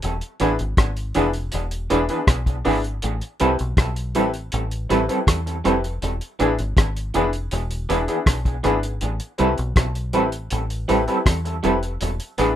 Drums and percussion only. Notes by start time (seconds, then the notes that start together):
0.02 closed hi-hat
0.21 closed hi-hat
0.40 closed hi-hat
0.59 closed hi-hat
0.77 kick, cross-stick, closed hi-hat
0.97 closed hi-hat
1.14 closed hi-hat
1.33 closed hi-hat
1.52 closed hi-hat
1.71 closed hi-hat
1.90 closed hi-hat
2.09 closed hi-hat
2.27 kick, cross-stick, closed hi-hat
2.46 kick, closed hi-hat
2.65 open hi-hat
2.84 closed hi-hat
3.02 closed hi-hat
3.21 closed hi-hat
3.40 closed hi-hat
3.59 closed hi-hat
3.77 kick, cross-stick, closed hi-hat
3.96 closed hi-hat
4.15 closed hi-hat
4.34 closed hi-hat
4.52 closed hi-hat
4.71 closed hi-hat
4.90 closed hi-hat
5.09 closed hi-hat
5.27 kick, cross-stick, closed hi-hat
5.47 closed hi-hat
5.65 cross-stick, closed hi-hat
5.84 closed hi-hat
6.02 closed hi-hat
6.21 closed hi-hat
6.40 closed hi-hat
6.59 closed hi-hat
6.77 kick, cross-stick, closed hi-hat
6.96 closed hi-hat
7.14 closed hi-hat
7.33 closed hi-hat
7.51 closed hi-hat
7.71 closed hi-hat
7.90 closed hi-hat
8.08 closed hi-hat
8.26 kick, cross-stick, closed hi-hat
8.45 kick, closed hi-hat
8.64 cross-stick, closed hi-hat
8.83 closed hi-hat
9.01 closed hi-hat
9.20 closed hi-hat
9.38 closed hi-hat
9.58 closed hi-hat
9.76 kick, cross-stick, closed hi-hat
9.95 closed hi-hat
10.13 closed hi-hat
10.32 closed hi-hat
10.50 closed hi-hat
10.70 closed hi-hat
10.89 closed hi-hat
11.08 closed hi-hat
11.26 kick, cross-stick, closed hi-hat
11.45 closed hi-hat
11.64 closed hi-hat
11.83 closed hi-hat
12.01 closed hi-hat
12.20 closed hi-hat
12.38 closed hi-hat